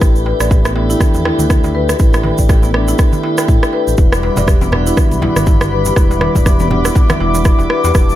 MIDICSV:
0, 0, Header, 1, 7, 480
1, 0, Start_track
1, 0, Key_signature, 1, "minor"
1, 0, Tempo, 495868
1, 15, Time_signature, 4, 2, 24, 8
1, 7893, End_track
2, 0, Start_track
2, 0, Title_t, "Analog synth pad"
2, 0, Program_c, 0, 89
2, 3856, Note_on_c, 0, 55, 80
2, 3856, Note_on_c, 0, 76, 72
2, 3856, Note_on_c, 0, 86, 91
2, 3857, Note_on_c, 0, 83, 72
2, 7657, Note_off_c, 0, 83, 0
2, 7696, Note_on_c, 0, 81, 74
2, 7893, Note_off_c, 0, 55, 0
2, 7893, Note_off_c, 0, 76, 0
2, 7893, Note_off_c, 0, 81, 0
2, 7893, Note_off_c, 0, 86, 0
2, 7893, End_track
3, 0, Start_track
3, 0, Title_t, "Marimba"
3, 0, Program_c, 1, 12
3, 13, Note_on_c, 1, 64, 75
3, 137, Note_off_c, 1, 64, 0
3, 253, Note_on_c, 1, 71, 75
3, 384, Note_off_c, 1, 71, 0
3, 391, Note_on_c, 1, 74, 92
3, 488, Note_off_c, 1, 74, 0
3, 495, Note_on_c, 1, 67, 78
3, 618, Note_off_c, 1, 67, 0
3, 631, Note_on_c, 1, 59, 76
3, 729, Note_off_c, 1, 59, 0
3, 733, Note_on_c, 1, 62, 70
3, 808, Note_off_c, 1, 62, 0
3, 871, Note_on_c, 1, 64, 96
3, 969, Note_off_c, 1, 64, 0
3, 1212, Note_on_c, 1, 64, 95
3, 1287, Note_off_c, 1, 64, 0
3, 1453, Note_on_c, 1, 64, 79
3, 1577, Note_off_c, 1, 64, 0
3, 1691, Note_on_c, 1, 71, 96
3, 1817, Note_off_c, 1, 71, 0
3, 1830, Note_on_c, 1, 67, 74
3, 1923, Note_off_c, 1, 67, 0
3, 1931, Note_on_c, 1, 64, 80
3, 2057, Note_off_c, 1, 64, 0
3, 2172, Note_on_c, 1, 71, 73
3, 2304, Note_off_c, 1, 71, 0
3, 2309, Note_on_c, 1, 74, 94
3, 2408, Note_off_c, 1, 74, 0
3, 2413, Note_on_c, 1, 67, 76
3, 2538, Note_off_c, 1, 67, 0
3, 2551, Note_on_c, 1, 59, 71
3, 2649, Note_off_c, 1, 59, 0
3, 2653, Note_on_c, 1, 62, 72
3, 2728, Note_off_c, 1, 62, 0
3, 2791, Note_on_c, 1, 64, 97
3, 2889, Note_off_c, 1, 64, 0
3, 3133, Note_on_c, 1, 64, 93
3, 3208, Note_off_c, 1, 64, 0
3, 3373, Note_on_c, 1, 64, 79
3, 3497, Note_off_c, 1, 64, 0
3, 3612, Note_on_c, 1, 71, 100
3, 3737, Note_off_c, 1, 71, 0
3, 3750, Note_on_c, 1, 67, 71
3, 3843, Note_off_c, 1, 67, 0
3, 3853, Note_on_c, 1, 64, 75
3, 3978, Note_off_c, 1, 64, 0
3, 4093, Note_on_c, 1, 71, 69
3, 4224, Note_off_c, 1, 71, 0
3, 4230, Note_on_c, 1, 74, 96
3, 4328, Note_off_c, 1, 74, 0
3, 4331, Note_on_c, 1, 67, 75
3, 4457, Note_off_c, 1, 67, 0
3, 4470, Note_on_c, 1, 59, 75
3, 4568, Note_off_c, 1, 59, 0
3, 4573, Note_on_c, 1, 62, 72
3, 4648, Note_off_c, 1, 62, 0
3, 4710, Note_on_c, 1, 64, 95
3, 4808, Note_off_c, 1, 64, 0
3, 5053, Note_on_c, 1, 64, 96
3, 5128, Note_off_c, 1, 64, 0
3, 5292, Note_on_c, 1, 64, 76
3, 5417, Note_off_c, 1, 64, 0
3, 5533, Note_on_c, 1, 71, 99
3, 5657, Note_off_c, 1, 71, 0
3, 5671, Note_on_c, 1, 67, 71
3, 5763, Note_off_c, 1, 67, 0
3, 5773, Note_on_c, 1, 64, 81
3, 5897, Note_off_c, 1, 64, 0
3, 6013, Note_on_c, 1, 71, 73
3, 6144, Note_off_c, 1, 71, 0
3, 6150, Note_on_c, 1, 74, 93
3, 6248, Note_off_c, 1, 74, 0
3, 6254, Note_on_c, 1, 67, 76
3, 6378, Note_off_c, 1, 67, 0
3, 6390, Note_on_c, 1, 59, 78
3, 6488, Note_off_c, 1, 59, 0
3, 6494, Note_on_c, 1, 62, 75
3, 6569, Note_off_c, 1, 62, 0
3, 6632, Note_on_c, 1, 64, 98
3, 6729, Note_off_c, 1, 64, 0
3, 6973, Note_on_c, 1, 64, 96
3, 7048, Note_off_c, 1, 64, 0
3, 7214, Note_on_c, 1, 64, 78
3, 7338, Note_off_c, 1, 64, 0
3, 7453, Note_on_c, 1, 71, 99
3, 7578, Note_off_c, 1, 71, 0
3, 7591, Note_on_c, 1, 67, 70
3, 7683, Note_off_c, 1, 67, 0
3, 7692, Note_on_c, 1, 64, 82
3, 7817, Note_off_c, 1, 64, 0
3, 7893, End_track
4, 0, Start_track
4, 0, Title_t, "Tonewheel organ"
4, 0, Program_c, 2, 16
4, 13, Note_on_c, 2, 57, 78
4, 13, Note_on_c, 2, 62, 70
4, 13, Note_on_c, 2, 67, 72
4, 13, Note_on_c, 2, 71, 85
4, 14, Note_on_c, 2, 64, 73
4, 709, Note_off_c, 2, 57, 0
4, 709, Note_off_c, 2, 62, 0
4, 709, Note_off_c, 2, 64, 0
4, 709, Note_off_c, 2, 67, 0
4, 709, Note_off_c, 2, 71, 0
4, 730, Note_on_c, 2, 57, 92
4, 731, Note_on_c, 2, 62, 89
4, 731, Note_on_c, 2, 64, 86
4, 731, Note_on_c, 2, 67, 88
4, 731, Note_on_c, 2, 71, 106
4, 1908, Note_off_c, 2, 57, 0
4, 1908, Note_off_c, 2, 62, 0
4, 1908, Note_off_c, 2, 64, 0
4, 1908, Note_off_c, 2, 67, 0
4, 1908, Note_off_c, 2, 71, 0
4, 1932, Note_on_c, 2, 62, 74
4, 1932, Note_on_c, 2, 67, 73
4, 1932, Note_on_c, 2, 71, 86
4, 1933, Note_on_c, 2, 57, 77
4, 1933, Note_on_c, 2, 64, 70
4, 2629, Note_off_c, 2, 57, 0
4, 2629, Note_off_c, 2, 62, 0
4, 2629, Note_off_c, 2, 64, 0
4, 2629, Note_off_c, 2, 67, 0
4, 2629, Note_off_c, 2, 71, 0
4, 2654, Note_on_c, 2, 62, 89
4, 2654, Note_on_c, 2, 64, 84
4, 2654, Note_on_c, 2, 67, 85
4, 2654, Note_on_c, 2, 71, 102
4, 2655, Note_on_c, 2, 57, 97
4, 3830, Note_off_c, 2, 57, 0
4, 3830, Note_off_c, 2, 62, 0
4, 3830, Note_off_c, 2, 64, 0
4, 3830, Note_off_c, 2, 67, 0
4, 3830, Note_off_c, 2, 71, 0
4, 3851, Note_on_c, 2, 64, 71
4, 3852, Note_on_c, 2, 55, 77
4, 3852, Note_on_c, 2, 62, 71
4, 3852, Note_on_c, 2, 66, 71
4, 3852, Note_on_c, 2, 71, 83
4, 4548, Note_off_c, 2, 55, 0
4, 4548, Note_off_c, 2, 62, 0
4, 4548, Note_off_c, 2, 64, 0
4, 4548, Note_off_c, 2, 71, 0
4, 4549, Note_off_c, 2, 66, 0
4, 4572, Note_on_c, 2, 55, 97
4, 4572, Note_on_c, 2, 62, 89
4, 4572, Note_on_c, 2, 64, 87
4, 4572, Note_on_c, 2, 66, 86
4, 4572, Note_on_c, 2, 71, 106
4, 5748, Note_off_c, 2, 55, 0
4, 5748, Note_off_c, 2, 62, 0
4, 5749, Note_off_c, 2, 64, 0
4, 5749, Note_off_c, 2, 66, 0
4, 5749, Note_off_c, 2, 71, 0
4, 5771, Note_on_c, 2, 55, 80
4, 5771, Note_on_c, 2, 71, 87
4, 5772, Note_on_c, 2, 62, 71
4, 5772, Note_on_c, 2, 64, 70
4, 5772, Note_on_c, 2, 66, 72
4, 6468, Note_off_c, 2, 55, 0
4, 6468, Note_off_c, 2, 64, 0
4, 6468, Note_off_c, 2, 66, 0
4, 6468, Note_off_c, 2, 71, 0
4, 6469, Note_off_c, 2, 62, 0
4, 6492, Note_on_c, 2, 55, 98
4, 6492, Note_on_c, 2, 66, 88
4, 6492, Note_on_c, 2, 71, 103
4, 6493, Note_on_c, 2, 62, 91
4, 6493, Note_on_c, 2, 64, 85
4, 7669, Note_off_c, 2, 55, 0
4, 7669, Note_off_c, 2, 62, 0
4, 7669, Note_off_c, 2, 64, 0
4, 7669, Note_off_c, 2, 66, 0
4, 7669, Note_off_c, 2, 71, 0
4, 7692, Note_on_c, 2, 55, 78
4, 7692, Note_on_c, 2, 62, 74
4, 7692, Note_on_c, 2, 64, 69
4, 7692, Note_on_c, 2, 66, 71
4, 7692, Note_on_c, 2, 71, 87
4, 7893, Note_off_c, 2, 55, 0
4, 7893, Note_off_c, 2, 62, 0
4, 7893, Note_off_c, 2, 64, 0
4, 7893, Note_off_c, 2, 66, 0
4, 7893, Note_off_c, 2, 71, 0
4, 7893, End_track
5, 0, Start_track
5, 0, Title_t, "Analog synth bass"
5, 0, Program_c, 3, 38
5, 14, Note_on_c, 3, 33, 91
5, 321, Note_off_c, 3, 33, 0
5, 389, Note_on_c, 3, 33, 90
5, 920, Note_off_c, 3, 33, 0
5, 1108, Note_on_c, 3, 40, 84
5, 1261, Note_off_c, 3, 40, 0
5, 1348, Note_on_c, 3, 38, 90
5, 1879, Note_off_c, 3, 38, 0
5, 1933, Note_on_c, 3, 33, 92
5, 2240, Note_off_c, 3, 33, 0
5, 2310, Note_on_c, 3, 33, 91
5, 2840, Note_off_c, 3, 33, 0
5, 3372, Note_on_c, 3, 45, 89
5, 3466, Note_off_c, 3, 45, 0
5, 3750, Note_on_c, 3, 33, 89
5, 3820, Note_off_c, 3, 33, 0
5, 3853, Note_on_c, 3, 28, 93
5, 4160, Note_off_c, 3, 28, 0
5, 4229, Note_on_c, 3, 28, 94
5, 4760, Note_off_c, 3, 28, 0
5, 4951, Note_on_c, 3, 35, 86
5, 5102, Note_off_c, 3, 35, 0
5, 5189, Note_on_c, 3, 31, 94
5, 5720, Note_off_c, 3, 31, 0
5, 5774, Note_on_c, 3, 28, 93
5, 6081, Note_off_c, 3, 28, 0
5, 6151, Note_on_c, 3, 28, 92
5, 6681, Note_off_c, 3, 28, 0
5, 6973, Note_on_c, 3, 28, 90
5, 7280, Note_off_c, 3, 28, 0
5, 7351, Note_on_c, 3, 28, 95
5, 7421, Note_off_c, 3, 28, 0
5, 7591, Note_on_c, 3, 40, 80
5, 7661, Note_off_c, 3, 40, 0
5, 7694, Note_on_c, 3, 28, 92
5, 7893, Note_off_c, 3, 28, 0
5, 7893, End_track
6, 0, Start_track
6, 0, Title_t, "Darbuka"
6, 251, Note_on_c, 9, 62, 90
6, 256, Note_on_c, 9, 63, 54
6, 348, Note_off_c, 9, 62, 0
6, 353, Note_off_c, 9, 63, 0
6, 494, Note_on_c, 9, 63, 63
6, 591, Note_off_c, 9, 63, 0
6, 631, Note_on_c, 9, 62, 80
6, 728, Note_off_c, 9, 62, 0
6, 732, Note_on_c, 9, 63, 81
6, 829, Note_off_c, 9, 63, 0
6, 969, Note_on_c, 9, 64, 88
6, 1066, Note_off_c, 9, 64, 0
6, 1110, Note_on_c, 9, 63, 62
6, 1207, Note_off_c, 9, 63, 0
6, 1222, Note_on_c, 9, 62, 92
6, 1319, Note_off_c, 9, 62, 0
6, 1342, Note_on_c, 9, 64, 82
6, 1349, Note_on_c, 9, 63, 63
6, 1439, Note_off_c, 9, 64, 0
6, 1446, Note_off_c, 9, 63, 0
6, 1589, Note_on_c, 9, 63, 85
6, 1686, Note_off_c, 9, 63, 0
6, 1933, Note_on_c, 9, 63, 62
6, 2029, Note_off_c, 9, 63, 0
6, 2163, Note_on_c, 9, 62, 103
6, 2170, Note_on_c, 9, 64, 86
6, 2174, Note_on_c, 9, 63, 62
6, 2260, Note_off_c, 9, 62, 0
6, 2267, Note_off_c, 9, 64, 0
6, 2271, Note_off_c, 9, 63, 0
6, 2411, Note_on_c, 9, 63, 82
6, 2508, Note_off_c, 9, 63, 0
6, 2546, Note_on_c, 9, 62, 77
6, 2643, Note_off_c, 9, 62, 0
6, 2786, Note_on_c, 9, 63, 52
6, 2883, Note_off_c, 9, 63, 0
6, 3024, Note_on_c, 9, 64, 91
6, 3029, Note_on_c, 9, 63, 58
6, 3121, Note_off_c, 9, 64, 0
6, 3126, Note_off_c, 9, 63, 0
6, 3131, Note_on_c, 9, 62, 110
6, 3228, Note_off_c, 9, 62, 0
6, 3276, Note_on_c, 9, 63, 87
6, 3373, Note_off_c, 9, 63, 0
6, 3608, Note_on_c, 9, 63, 59
6, 3705, Note_off_c, 9, 63, 0
6, 3993, Note_on_c, 9, 63, 61
6, 4090, Note_off_c, 9, 63, 0
6, 4098, Note_on_c, 9, 62, 96
6, 4195, Note_off_c, 9, 62, 0
6, 4229, Note_on_c, 9, 63, 93
6, 4326, Note_off_c, 9, 63, 0
6, 4473, Note_on_c, 9, 62, 76
6, 4570, Note_off_c, 9, 62, 0
6, 4570, Note_on_c, 9, 63, 62
6, 4667, Note_off_c, 9, 63, 0
6, 4808, Note_on_c, 9, 63, 61
6, 4810, Note_on_c, 9, 64, 87
6, 4905, Note_off_c, 9, 63, 0
6, 4907, Note_off_c, 9, 64, 0
6, 5052, Note_on_c, 9, 63, 84
6, 5054, Note_on_c, 9, 62, 116
6, 5149, Note_off_c, 9, 63, 0
6, 5151, Note_off_c, 9, 62, 0
6, 5191, Note_on_c, 9, 64, 93
6, 5287, Note_off_c, 9, 64, 0
6, 5428, Note_on_c, 9, 63, 54
6, 5525, Note_off_c, 9, 63, 0
6, 5675, Note_on_c, 9, 63, 63
6, 5772, Note_off_c, 9, 63, 0
6, 5913, Note_on_c, 9, 63, 85
6, 6009, Note_on_c, 9, 64, 91
6, 6010, Note_off_c, 9, 63, 0
6, 6011, Note_on_c, 9, 62, 108
6, 6106, Note_off_c, 9, 64, 0
6, 6108, Note_off_c, 9, 62, 0
6, 6249, Note_on_c, 9, 63, 65
6, 6346, Note_off_c, 9, 63, 0
6, 6492, Note_on_c, 9, 63, 64
6, 6589, Note_off_c, 9, 63, 0
6, 6730, Note_on_c, 9, 63, 92
6, 6827, Note_off_c, 9, 63, 0
6, 6869, Note_on_c, 9, 64, 88
6, 6966, Note_off_c, 9, 64, 0
6, 6974, Note_on_c, 9, 62, 116
6, 7071, Note_off_c, 9, 62, 0
6, 7110, Note_on_c, 9, 63, 71
6, 7207, Note_off_c, 9, 63, 0
6, 7344, Note_on_c, 9, 63, 67
6, 7440, Note_off_c, 9, 63, 0
6, 7595, Note_on_c, 9, 63, 89
6, 7692, Note_off_c, 9, 63, 0
6, 7893, End_track
7, 0, Start_track
7, 0, Title_t, "Drums"
7, 14, Note_on_c, 9, 36, 109
7, 14, Note_on_c, 9, 37, 71
7, 15, Note_on_c, 9, 82, 62
7, 110, Note_off_c, 9, 36, 0
7, 111, Note_off_c, 9, 37, 0
7, 111, Note_off_c, 9, 82, 0
7, 151, Note_on_c, 9, 82, 33
7, 248, Note_off_c, 9, 82, 0
7, 389, Note_on_c, 9, 82, 75
7, 391, Note_on_c, 9, 37, 81
7, 485, Note_off_c, 9, 82, 0
7, 488, Note_off_c, 9, 37, 0
7, 493, Note_on_c, 9, 36, 102
7, 496, Note_on_c, 9, 82, 52
7, 590, Note_off_c, 9, 36, 0
7, 593, Note_off_c, 9, 82, 0
7, 629, Note_on_c, 9, 82, 37
7, 632, Note_on_c, 9, 37, 78
7, 726, Note_off_c, 9, 82, 0
7, 729, Note_off_c, 9, 37, 0
7, 872, Note_on_c, 9, 82, 62
7, 969, Note_off_c, 9, 82, 0
7, 973, Note_on_c, 9, 36, 109
7, 974, Note_on_c, 9, 37, 68
7, 976, Note_on_c, 9, 82, 57
7, 1070, Note_off_c, 9, 36, 0
7, 1071, Note_off_c, 9, 37, 0
7, 1072, Note_off_c, 9, 82, 0
7, 1105, Note_on_c, 9, 82, 38
7, 1202, Note_off_c, 9, 82, 0
7, 1213, Note_on_c, 9, 37, 81
7, 1310, Note_off_c, 9, 37, 0
7, 1348, Note_on_c, 9, 82, 77
7, 1445, Note_off_c, 9, 82, 0
7, 1452, Note_on_c, 9, 36, 105
7, 1453, Note_on_c, 9, 37, 73
7, 1453, Note_on_c, 9, 82, 59
7, 1549, Note_off_c, 9, 36, 0
7, 1549, Note_off_c, 9, 37, 0
7, 1550, Note_off_c, 9, 82, 0
7, 1585, Note_on_c, 9, 82, 35
7, 1682, Note_off_c, 9, 82, 0
7, 1830, Note_on_c, 9, 82, 73
7, 1831, Note_on_c, 9, 37, 85
7, 1927, Note_off_c, 9, 82, 0
7, 1928, Note_off_c, 9, 37, 0
7, 1928, Note_on_c, 9, 82, 56
7, 1933, Note_on_c, 9, 36, 112
7, 2024, Note_off_c, 9, 82, 0
7, 2030, Note_off_c, 9, 36, 0
7, 2064, Note_on_c, 9, 82, 38
7, 2072, Note_on_c, 9, 37, 84
7, 2161, Note_off_c, 9, 82, 0
7, 2169, Note_off_c, 9, 37, 0
7, 2304, Note_on_c, 9, 82, 76
7, 2310, Note_on_c, 9, 36, 56
7, 2401, Note_off_c, 9, 82, 0
7, 2407, Note_off_c, 9, 36, 0
7, 2410, Note_on_c, 9, 82, 61
7, 2413, Note_on_c, 9, 36, 110
7, 2414, Note_on_c, 9, 37, 69
7, 2506, Note_off_c, 9, 82, 0
7, 2510, Note_off_c, 9, 36, 0
7, 2511, Note_off_c, 9, 37, 0
7, 2545, Note_on_c, 9, 82, 34
7, 2642, Note_off_c, 9, 82, 0
7, 2653, Note_on_c, 9, 37, 85
7, 2750, Note_off_c, 9, 37, 0
7, 2787, Note_on_c, 9, 82, 66
7, 2884, Note_off_c, 9, 82, 0
7, 2888, Note_on_c, 9, 82, 61
7, 2893, Note_on_c, 9, 36, 117
7, 2894, Note_on_c, 9, 37, 69
7, 2985, Note_off_c, 9, 82, 0
7, 2990, Note_off_c, 9, 36, 0
7, 2991, Note_off_c, 9, 37, 0
7, 3026, Note_on_c, 9, 82, 36
7, 3123, Note_off_c, 9, 82, 0
7, 3269, Note_on_c, 9, 82, 75
7, 3272, Note_on_c, 9, 37, 86
7, 3366, Note_off_c, 9, 82, 0
7, 3369, Note_off_c, 9, 37, 0
7, 3373, Note_on_c, 9, 36, 107
7, 3374, Note_on_c, 9, 82, 54
7, 3470, Note_off_c, 9, 36, 0
7, 3471, Note_off_c, 9, 82, 0
7, 3512, Note_on_c, 9, 82, 33
7, 3513, Note_on_c, 9, 37, 85
7, 3609, Note_off_c, 9, 37, 0
7, 3609, Note_off_c, 9, 82, 0
7, 3752, Note_on_c, 9, 82, 69
7, 3846, Note_off_c, 9, 82, 0
7, 3846, Note_on_c, 9, 82, 54
7, 3853, Note_on_c, 9, 36, 112
7, 3854, Note_on_c, 9, 62, 55
7, 3943, Note_off_c, 9, 82, 0
7, 3950, Note_off_c, 9, 36, 0
7, 3951, Note_off_c, 9, 62, 0
7, 3992, Note_on_c, 9, 37, 89
7, 3996, Note_on_c, 9, 82, 41
7, 4089, Note_off_c, 9, 37, 0
7, 4093, Note_off_c, 9, 82, 0
7, 4097, Note_on_c, 9, 62, 37
7, 4193, Note_off_c, 9, 62, 0
7, 4219, Note_on_c, 9, 63, 58
7, 4227, Note_on_c, 9, 82, 73
7, 4232, Note_on_c, 9, 64, 98
7, 4316, Note_off_c, 9, 63, 0
7, 4324, Note_off_c, 9, 82, 0
7, 4329, Note_off_c, 9, 64, 0
7, 4331, Note_on_c, 9, 62, 52
7, 4333, Note_on_c, 9, 36, 113
7, 4335, Note_on_c, 9, 37, 73
7, 4339, Note_on_c, 9, 82, 56
7, 4427, Note_off_c, 9, 62, 0
7, 4430, Note_off_c, 9, 36, 0
7, 4432, Note_off_c, 9, 37, 0
7, 4435, Note_off_c, 9, 82, 0
7, 4465, Note_on_c, 9, 63, 105
7, 4470, Note_on_c, 9, 82, 37
7, 4562, Note_off_c, 9, 63, 0
7, 4567, Note_off_c, 9, 82, 0
7, 4570, Note_on_c, 9, 64, 91
7, 4575, Note_on_c, 9, 37, 88
7, 4667, Note_off_c, 9, 64, 0
7, 4672, Note_off_c, 9, 37, 0
7, 4709, Note_on_c, 9, 62, 38
7, 4710, Note_on_c, 9, 82, 78
7, 4806, Note_off_c, 9, 62, 0
7, 4806, Note_off_c, 9, 82, 0
7, 4814, Note_on_c, 9, 36, 114
7, 4814, Note_on_c, 9, 37, 74
7, 4814, Note_on_c, 9, 82, 64
7, 4910, Note_off_c, 9, 36, 0
7, 4911, Note_off_c, 9, 37, 0
7, 4911, Note_off_c, 9, 82, 0
7, 4950, Note_on_c, 9, 62, 48
7, 4954, Note_on_c, 9, 82, 40
7, 5047, Note_off_c, 9, 62, 0
7, 5051, Note_off_c, 9, 82, 0
7, 5054, Note_on_c, 9, 63, 89
7, 5057, Note_on_c, 9, 64, 97
7, 5151, Note_off_c, 9, 63, 0
7, 5154, Note_off_c, 9, 64, 0
7, 5191, Note_on_c, 9, 62, 39
7, 5191, Note_on_c, 9, 82, 70
7, 5192, Note_on_c, 9, 37, 89
7, 5288, Note_off_c, 9, 62, 0
7, 5288, Note_off_c, 9, 82, 0
7, 5289, Note_off_c, 9, 37, 0
7, 5291, Note_on_c, 9, 82, 64
7, 5293, Note_on_c, 9, 36, 107
7, 5297, Note_on_c, 9, 64, 85
7, 5387, Note_off_c, 9, 82, 0
7, 5390, Note_off_c, 9, 36, 0
7, 5393, Note_off_c, 9, 64, 0
7, 5428, Note_on_c, 9, 62, 51
7, 5431, Note_on_c, 9, 37, 92
7, 5433, Note_on_c, 9, 82, 37
7, 5525, Note_off_c, 9, 62, 0
7, 5528, Note_off_c, 9, 37, 0
7, 5530, Note_off_c, 9, 82, 0
7, 5665, Note_on_c, 9, 82, 73
7, 5674, Note_on_c, 9, 63, 65
7, 5762, Note_off_c, 9, 82, 0
7, 5770, Note_off_c, 9, 63, 0
7, 5772, Note_on_c, 9, 37, 78
7, 5773, Note_on_c, 9, 62, 46
7, 5774, Note_on_c, 9, 36, 119
7, 5779, Note_on_c, 9, 82, 69
7, 5869, Note_off_c, 9, 37, 0
7, 5870, Note_off_c, 9, 36, 0
7, 5870, Note_off_c, 9, 62, 0
7, 5876, Note_off_c, 9, 82, 0
7, 5916, Note_on_c, 9, 82, 41
7, 6011, Note_on_c, 9, 37, 81
7, 6012, Note_off_c, 9, 82, 0
7, 6015, Note_on_c, 9, 62, 39
7, 6108, Note_off_c, 9, 37, 0
7, 6112, Note_off_c, 9, 62, 0
7, 6148, Note_on_c, 9, 63, 63
7, 6151, Note_on_c, 9, 36, 61
7, 6153, Note_on_c, 9, 64, 101
7, 6153, Note_on_c, 9, 82, 73
7, 6245, Note_off_c, 9, 63, 0
7, 6248, Note_off_c, 9, 36, 0
7, 6250, Note_off_c, 9, 64, 0
7, 6250, Note_off_c, 9, 82, 0
7, 6251, Note_on_c, 9, 62, 46
7, 6253, Note_on_c, 9, 36, 115
7, 6253, Note_on_c, 9, 37, 80
7, 6255, Note_on_c, 9, 82, 67
7, 6348, Note_off_c, 9, 62, 0
7, 6350, Note_off_c, 9, 36, 0
7, 6350, Note_off_c, 9, 37, 0
7, 6352, Note_off_c, 9, 82, 0
7, 6384, Note_on_c, 9, 82, 39
7, 6389, Note_on_c, 9, 63, 98
7, 6480, Note_off_c, 9, 82, 0
7, 6486, Note_off_c, 9, 63, 0
7, 6490, Note_on_c, 9, 63, 57
7, 6494, Note_on_c, 9, 64, 92
7, 6587, Note_off_c, 9, 63, 0
7, 6591, Note_off_c, 9, 64, 0
7, 6626, Note_on_c, 9, 62, 36
7, 6631, Note_on_c, 9, 37, 89
7, 6631, Note_on_c, 9, 82, 79
7, 6723, Note_off_c, 9, 62, 0
7, 6727, Note_off_c, 9, 82, 0
7, 6728, Note_off_c, 9, 37, 0
7, 6733, Note_on_c, 9, 36, 119
7, 6736, Note_on_c, 9, 82, 66
7, 6738, Note_on_c, 9, 64, 98
7, 6830, Note_off_c, 9, 36, 0
7, 6833, Note_off_c, 9, 82, 0
7, 6835, Note_off_c, 9, 64, 0
7, 6866, Note_on_c, 9, 82, 39
7, 6870, Note_on_c, 9, 37, 97
7, 6875, Note_on_c, 9, 62, 54
7, 6876, Note_on_c, 9, 63, 110
7, 6962, Note_off_c, 9, 82, 0
7, 6967, Note_off_c, 9, 37, 0
7, 6972, Note_off_c, 9, 62, 0
7, 6973, Note_off_c, 9, 63, 0
7, 7109, Note_on_c, 9, 82, 79
7, 7116, Note_on_c, 9, 62, 40
7, 7205, Note_off_c, 9, 82, 0
7, 7209, Note_on_c, 9, 82, 58
7, 7212, Note_off_c, 9, 62, 0
7, 7213, Note_on_c, 9, 36, 122
7, 7213, Note_on_c, 9, 37, 78
7, 7305, Note_off_c, 9, 82, 0
7, 7310, Note_off_c, 9, 36, 0
7, 7310, Note_off_c, 9, 37, 0
7, 7351, Note_on_c, 9, 62, 45
7, 7353, Note_on_c, 9, 82, 39
7, 7448, Note_off_c, 9, 62, 0
7, 7450, Note_off_c, 9, 82, 0
7, 7453, Note_on_c, 9, 37, 89
7, 7550, Note_off_c, 9, 37, 0
7, 7591, Note_on_c, 9, 82, 74
7, 7687, Note_off_c, 9, 82, 0
7, 7691, Note_on_c, 9, 82, 66
7, 7694, Note_on_c, 9, 36, 118
7, 7694, Note_on_c, 9, 37, 80
7, 7694, Note_on_c, 9, 62, 49
7, 7788, Note_off_c, 9, 82, 0
7, 7791, Note_off_c, 9, 36, 0
7, 7791, Note_off_c, 9, 37, 0
7, 7791, Note_off_c, 9, 62, 0
7, 7837, Note_on_c, 9, 82, 40
7, 7893, Note_off_c, 9, 82, 0
7, 7893, End_track
0, 0, End_of_file